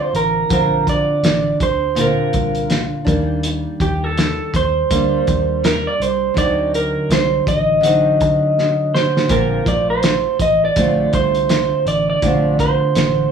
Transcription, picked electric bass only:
0.14 0.43 A1 medium
0.51 1.09 A#1 medium
1.23 1.53 A1 medium
1.60 2.19 D2 medium
2.34 2.93 C2 medium
3.07 3.65 D#2 medium
3.80 4.39 D#2 medium
4.54 4.83 D#2 medium
4.91 5.20 D2 medium
5.28 5.86 D#2 medium
6.00 6.29 C2 medium
6.37 6.95 D2 medium
7.10 7.39 C2 medium
7.47 8.21 A1 medium
8.21 8.79 D2 medium
9.29 9.59 A#1 loud
9.66 10.25 A#1 medium
10.39 10.69 A1 medium
10.77 11.06 A#1 medium
11.14 11.72 C2 medium
11.86 12.15 A1 medium
12.22 12.81 A#1 medium
12.96 13.25 A1 medium

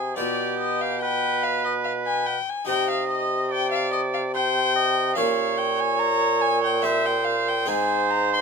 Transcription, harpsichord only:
0.00 0.15 C3 soft
0.00 0.13 D4 soft
0.00 0.14 G#4 soft
0.16 2.37 B2 medium
0.16 2.63 F4 soft
0.16 2.64 G4 soft
2.65 5.13 C3 medium
2.65 5.11 D#4 medium
2.65 5.12 G4 medium
5.15 7.65 A#2 medium
5.15 6.80 C#4 medium
5.15 6.80 G4 medium
6.82 7.64 C4 medium
6.82 7.65 G4 medium
7.66 8.41 G#2 medium
7.66 8.41 C4 medium
7.66 8.41 G#4 medium

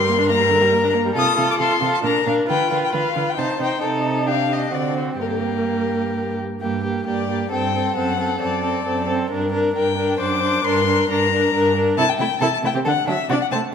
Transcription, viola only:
0.00 0.10 G3 soft
0.09 0.20 A#3 soft
0.18 0.31 D4 medium
0.30 0.42 A#3 soft
0.40 0.53 G3 soft
0.51 0.63 D3 soft
0.62 0.74 G3 soft
0.73 0.85 A#3 soft
0.84 0.96 D4 soft
0.94 1.07 A#3 soft
1.06 1.16 G3 soft
1.17 1.37 F4 medium
1.38 1.59 F4 soft
1.61 1.82 F4 soft
1.83 2.04 F4 soft
2.04 2.26 D4 soft
2.27 2.48 D4 soft
2.48 2.70 F4 soft
2.70 2.92 F4 soft
2.93 3.14 F4 soft
3.15 3.37 F4 soft
3.37 3.59 D#4 soft
3.60 3.80 D#4 soft
3.81 4.28 D#4 soft
4.27 4.73 D4 soft
4.73 5.21 C4 soft
5.20 6.41 A#3 soft
6.62 6.84 A#3 soft
6.85 7.07 A#3 soft
7.07 7.29 A#3 soft
7.30 7.51 A#3 soft
7.52 7.74 C4 soft
7.75 7.96 C4 soft
7.96 8.18 C4 soft
8.18 8.39 C4 soft
8.40 8.63 C4 soft
8.64 8.85 C4 soft
8.85 9.08 C4 soft
9.09 9.31 C4 soft
9.32 9.52 D4 soft
9.52 9.75 D4 soft
9.75 9.97 D4 soft
9.98 10.20 D4 soft
10.20 10.42 D4 soft
10.42 10.64 D4 soft
10.65 10.86 D4 soft
10.87 11.09 D4 soft
11.10 11.31 D4 soft
11.32 11.53 D4 soft
11.54 11.75 D4 soft
11.76 11.97 D4 soft
11.98 12.02 E4 medium
12.21 12.25 A3 soft
12.42 12.47 E4 medium
12.64 12.68 A3 soft
12.75 12.80 C4 soft
12.88 12.92 D4 medium
13.09 13.13 F#3 soft
13.32 13.36 D4 medium
13.55 13.59 A3 soft

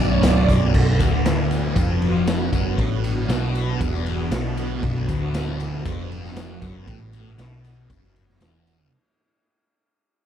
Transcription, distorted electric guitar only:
0.00 0.20 B1 medium
0.00 0.21 F#2 medium
0.00 0.23 B2 medium
0.21 0.71 B1 loud
0.21 0.49 F#2 loud
0.21 0.46 B2 loud
0.47 0.73 F#2 medium
0.47 0.72 B2 medium
0.73 0.98 B1 loud
0.99 1.75 D2 loud
1.75 2.52 F2 loud
2.52 2.77 F#2 loud
2.77 3.28 A2 loud
3.29 3.79 B2 loud
3.81 4.31 E2 loud
4.31 4.82 B2 loud
4.83 5.07 B1 loud
5.08 5.84 D2 loud
5.85 6.61 F2 loud
6.62 6.87 F#2 loud
6.87 7.38 A2 loud
7.39 7.89 B2 loud
7.89 8.40 F#2 loud
8.40 8.91 E2 loud

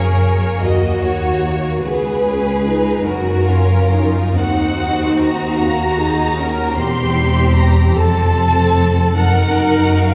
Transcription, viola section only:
0.00 0.60 A#4 soft
0.63 1.85 F#4 soft
1.85 3.05 G#4 soft
3.05 3.47 F#4 soft
3.47 3.92 C#4 soft
3.93 5.59 D#4 medium
5.59 5.98 F#4 soft
5.97 6.37 G#4 soft
6.37 6.77 A#4 medium
6.77 7.94 G4 medium
7.96 9.20 A4 medium
9.19 10.14 A#4 medium

